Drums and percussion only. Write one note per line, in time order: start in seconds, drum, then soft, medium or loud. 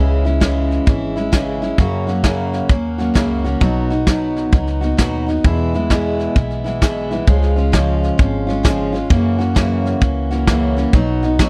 0.25 snare soft
0.41 kick medium
0.41 snare loud
0.41 hi-hat pedal medium
0.71 snare soft
0.87 kick loud
0.87 snare soft
1.17 snare soft
1.33 kick medium
1.33 snare loud
1.33 hi-hat pedal medium
1.62 snare soft
1.78 kick loud
1.78 snare soft
2.08 snare soft
2.24 kick medium
2.24 snare loud
2.24 hi-hat pedal medium
2.53 snare soft
2.69 kick loud
2.69 snare soft
2.99 snare soft
3.15 kick medium
3.15 snare loud
3.15 hi-hat pedal medium
3.45 snare soft
3.61 kick loud
3.61 snare soft
3.90 snare soft
4.07 kick medium
4.07 snare loud
4.07 hi-hat pedal medium
4.36 snare soft
4.52 kick loud
4.52 snare soft
4.67 snare soft
4.82 snare soft
4.98 kick medium
4.98 snare loud
4.98 hi-hat pedal medium
5.28 snare soft
5.44 kick loud
5.44 snare soft
5.74 snare soft
5.90 kick medium
5.90 snare loud
5.90 hi-hat pedal medium
6.19 snare soft
6.36 kick loud
6.36 snare soft
6.51 snare soft
6.65 snare soft
6.82 kick medium
6.82 snare loud
6.82 hi-hat pedal medium
7.11 snare soft
7.27 kick loud
7.27 snare soft
7.42 snare soft
7.57 snare soft
7.73 kick medium
7.73 snare loud
7.73 hi-hat pedal medium
8.03 snare soft
8.19 kick loud
8.19 snare soft
8.49 snare soft
8.65 kick medium
8.65 snare loud
8.65 hi-hat pedal medium
8.95 snare soft
9.10 kick loud
9.10 snare soft
9.40 snare soft
9.56 kick medium
9.56 snare loud
9.56 hi-hat pedal medium
9.86 snare soft
10.01 kick loud
10.01 snare soft
10.31 snare soft
10.47 kick medium
10.47 snare loud
10.47 hi-hat pedal medium
10.77 snare soft
10.93 kick loud
10.93 snare soft
11.23 snare soft
11.39 kick medium
11.39 snare loud
11.39 hi-hat pedal medium